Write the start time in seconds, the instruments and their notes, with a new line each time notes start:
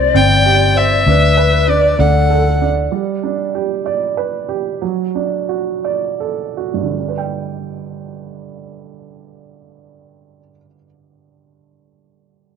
Already playing: fingered electric bass C2, upright piano C4 G4 C5, pan flute D5
0.14 fingered electric bass G1, upright piano C4, violin G5
0.46 upright piano G4
0.76 upright piano C5, violin E5
1.06 fingered electric bass D2, upright piano D4, pan flute B4
1.37 upright piano B4
1.68 upright piano D4, violin D5
1.99 fingered electric bass D2, upright piano D4, pan flute A4, violin F#5
2.30 upright piano A4
2.62 upright piano D4
2.92 upright piano G3
3.23 upright piano D4
3.55 upright piano G4
3.86 upright piano D5
4.17 upright piano B4
4.49 upright piano G4
4.82 upright piano F#3
5.15 upright piano D4
5.49 upright piano F#4
5.84 upright piano D5
6.20 upright piano A4
6.57 upright piano F#4
6.74 upright piano G2
6.83 upright piano D3
6.91 upright piano G3
7.00 upright piano D4
7.09 upright piano B4
7.18 upright piano G5